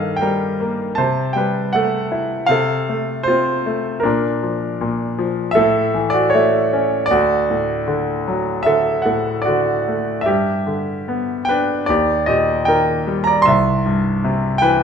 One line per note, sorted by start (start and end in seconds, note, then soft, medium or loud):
0.00 0.94 G2 medium
0.00 0.95 D#3 soft
0.00 0.99 G4 medium
0.00 0.19 A4 soft
0.00 1.00 D#5 medium
0.00 0.22 F5 medium
0.16 0.73 G5 medium
0.21 0.96 G3 soft
0.21 0.75 A#4 medium
0.60 0.97 A#3 medium
0.95 2.47 C3 medium
0.95 1.34 C5 medium
0.95 1.36 A5 medium
1.33 2.48 G3 soft
1.33 1.74 G5 medium
1.37 1.73 B4 soft
1.73 2.49 A3 medium
1.73 2.48 A4 medium
1.73 2.53 F#5 medium
2.12 2.49 E4 medium
2.46 4.00 C3 medium
2.46 3.28 F5 medium
2.51 3.24 A4 medium
2.89 3.65 A3 soft
3.23 3.79 C5 medium
3.28 4.03 C4 soft
3.28 3.82 F4 medium
3.66 4.03 A3 medium
4.00 5.52 D4 medium
4.00 5.59 A#4 medium
4.05 4.80 A#2 medium
4.43 5.17 F3 soft
4.81 5.55 A#2 medium
5.18 5.56 F3 medium
5.51 6.09 A4 medium
5.51 6.13 E5 medium
5.57 7.06 A2 medium
5.94 7.06 E3 soft
6.10 6.32 F#4 medium
6.10 6.30 D5 medium
6.30 6.85 C#5 medium
6.34 7.08 A3 medium
6.34 6.87 E4 medium
6.73 7.10 C#4 medium
7.06 8.69 D5 medium
7.11 10.24 D2 medium
7.11 8.63 F#4 medium
7.50 9.03 A2 soft
7.88 8.66 D3 soft
8.28 9.84 F#3 medium
8.63 9.03 A4 medium
8.63 9.06 E5 medium
8.67 9.47 D3 soft
9.02 9.43 A4 soft
9.02 9.46 F#5 medium
9.06 10.24 A2 soft
9.42 10.03 F#4 medium
9.42 10.01 D5 medium
9.48 10.26 D3 soft
9.88 10.27 A3 soft
10.21 11.50 E5 medium
10.26 11.85 G2 medium
10.26 11.45 G4 medium
10.67 11.85 D3 soft
11.08 11.86 B3 soft
11.45 11.86 B4 medium
11.45 11.84 G5 medium
11.51 11.89 D4 soft
11.86 13.42 D#2 medium
11.86 12.26 G4 medium
11.86 12.28 D5 medium
12.26 13.42 A#2 soft
12.26 12.65 G4 medium
12.26 12.64 D#5 medium
12.65 13.44 D#3 soft
12.65 13.23 A#4 medium
12.65 13.21 G5 medium
13.07 13.45 G3 soft
13.24 13.45 D5 medium
13.24 13.45 A#5 medium
13.42 14.57 E5 medium
13.42 14.63 C6 medium
13.47 14.83 C2 medium
13.86 14.83 G2 soft
14.24 14.83 C3 medium
14.58 14.83 E3 medium
14.58 14.83 B4 medium
14.58 14.83 G5 medium